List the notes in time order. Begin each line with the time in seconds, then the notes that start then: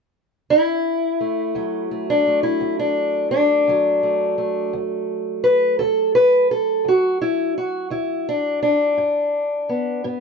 0.50 D2 E4
1.21 A3
1.55 D2 F#3
1.91 A3
2.10 D4
2.27 A3
2.43 E4
2.61 D2
2.79 D4
3.31 D4
3.68 D2 F#3
4.03 A3
4.38 A3
4.73 D2
5.44 B4
5.79 D2 A4
6.15 B4
6.51 A4
6.85 D2 F#4
7.22 E4
7.58 F#4
7.90 D2 E4
8.29 D4
8.63 D4
8.98 G2
9.69 B3
10.04 G2 B3